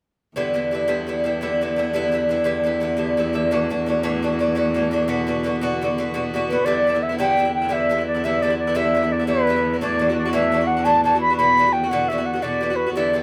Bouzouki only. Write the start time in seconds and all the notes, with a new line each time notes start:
0.36 G2 D3 B3 E4
0.54 G2 D3 B3 E4
0.71 G2 D3 B3 E4
0.88 G2 D3 B3 E4
1.07 G2 D3 B3 E4
1.24 G2 D3 B3 E4
1.41 G2 D3 B3 E4
1.61 G2 D3 B3 E4
1.76 G2 D3 B3 E4
1.93 G2 D3 B3 E4
2.11 G2 D3 B3 E4
2.29 G2 D3 B3 E4
2.44 G2 D3 B3 E4
2.63 G2 D3 B3 E4
2.80 G2 D3 B3 E4
2.97 G2 D3 B3 E4
3.17 G2 D3 B3 E4
3.33 G2 D3 B3 E4
3.51 A2 E3 D4 F#4
3.69 A2 E3 D4 F#4
3.86 A2 E3 D4 F#4
4.03 A2 E3 D4 F#4
4.22 A2 E3 D4 F#4
4.39 A2 E3 D4 F#4
4.55 A2 E3 D4 F#4
4.74 A2 E3 D4 F#4
4.91 A2 E3 D4 F#4
5.08 B2 D3 B3 F#4
5.27 B2 D3 B3 F#4
5.43 B2 D3 B3 F#4
5.61 B2 D3 B3 F#4
5.81 B2 D3 B3 F#4
5.98 B2 D3 B3 F#4
6.14 B2 D3 B3 F#4
6.34 B2 D3 B3 F#4
6.50 B2 D3 B3 F#4
6.66 G2 D3 B3 E4
6.87 G2 D3 B3 E4
6.95 D3 B3 E4
7.09 D3 B3 E4
7.19 G2 D3 B3 E4
7.37 G2 D3 B3 E4
7.45 D3 B3 E4
7.62 D3 B3 E4
7.69 G2 D3 B3 E4
7.89 G2 D3 B3 E4
7.98 D3 B3 E4
8.14 D3 B3 E4
8.24 G2 D3 B3 E4
8.43 G2 D3 B3 E4
8.50 D3 B3 E4
8.67 D3 B3 E4
8.75 G2 D3 B3 E4
8.94 G2 D3 B3 E4
9.02 D3 B3 E4
9.19 D3 B3 E4
9.27 G2 D3 B3 E4
9.47 G2 D3 B3 E4
9.56 D3 B3 E4
9.73 D3 B3 E4
9.81 A2 E3 D4 F#4
9.99 A2 E3 D4 F#4
10.09 E3 D4 F#4
10.25 E3 D4 F#4
10.33 A2 E3 D4 F#4
10.52 A2 E3 D4 F#4
10.61 E3 D4 F#4
10.77 E3 D4 F#4
10.85 A2 E3 D4 F#4
11.04 A2 E3 D4 F#4
11.15 E3 D4 F#4
11.30 E3 D4 F#4
11.39 B2 D3 B3 F#4
11.57 B2 D3 B3 F#4
11.66 D3 B3 F#4
11.84 D3 B3 F#4
11.91 B2 D3 B3 F#4
12.10 B2 D3 B3 F#4
12.18 D3 B3 F#4
12.33 D3 B3 F#4
12.42 B2 D3 B3 F#4
12.61 B2 D3 B3 F#4
12.70 D3 B3 F#4
12.87 D3 B3 F#4
12.96 G2 D3 B3 E4
13.13 G2 D3 B3 E4